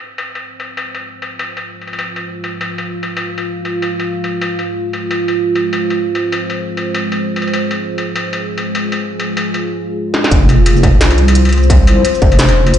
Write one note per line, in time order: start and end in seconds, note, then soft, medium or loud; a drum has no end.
0.00 10.27 G#3 medium
0.00 10.27 F4 medium
0.00 1.98 C5 medium
0.18 struck metal medium
0.35 struck metal soft
0.60 struck metal soft
0.77 struck metal medium
0.95 struck metal soft
1.22 struck metal soft
1.39 struck metal medium
1.57 struck metal soft
1.82 struck metal soft
1.87 struck metal soft
1.93 struck metal soft
1.99 4.75 F5 medium
1.99 struck metal medium
2.16 struck metal soft
2.44 struck metal soft
2.61 struck metal medium
2.78 struck metal soft
3.03 struck metal soft
3.17 struck metal medium
3.38 struck metal soft
3.65 struck metal soft
3.82 struck metal medium
4.00 struck metal soft
4.24 struck metal soft
4.42 struck metal medium
4.59 struck metal soft
4.76 7.53 C5 medium
4.93 struck metal soft
5.11 struck metal medium
5.28 struck metal soft
5.55 struck metal soft
5.73 struck metal medium
5.90 struck metal soft
6.15 struck metal medium
6.32 struck metal medium
6.50 struck metal soft
6.77 struck metal soft
6.95 struck metal medium
7.12 struck metal soft
7.36 struck metal soft
7.42 struck metal soft
7.48 struck metal soft
7.53 10.30 G#4 medium
7.53 struck metal medium
7.71 struck metal medium
7.98 struck metal soft
8.16 struck metal medium
8.33 struck metal medium
8.58 struck metal medium
8.75 struck metal medium
8.92 struck metal medium
9.20 struck metal medium
9.37 struck metal medium
9.54 struck metal soft
10.14 snare medium
10.24 snare medium
10.31 10.99 F1 medium
10.31 12.79 G#3 medium
10.31 12.79 F4 medium
10.31 12.79 C5 medium
10.31 kick loud
10.31 closed hi-hat medium
10.49 struck metal medium
10.49 shaker soft
10.66 closed hi-hat medium
10.66 struck metal medium
10.76 shaker soft
10.83 kick loud
10.83 closed hi-hat soft
10.83 struck metal medium
11.00 12.03 C2 loud
11.00 snare loud
11.00 closed hi-hat medium
11.11 struck metal medium
11.18 closed hi-hat soft
11.28 struck metal medium
11.35 closed hi-hat medium
11.45 struck metal soft
11.49 closed hi-hat soft
11.49 struck metal soft
11.53 struck metal soft
11.58 struck metal soft
11.63 shaker soft
11.70 kick loud
11.70 closed hi-hat medium
11.70 struck metal medium
11.87 struck metal medium
12.05 closed hi-hat medium
12.05 struck metal medium
12.15 shaker soft
12.22 12.73 F1 loud
12.22 kick loud
12.22 closed hi-hat soft
12.32 struck metal medium
12.39 snare loud
12.39 closed hi-hat medium
12.49 struck metal medium
12.67 struck metal medium
12.74 12.79 G1 loud
12.74 closed hi-hat medium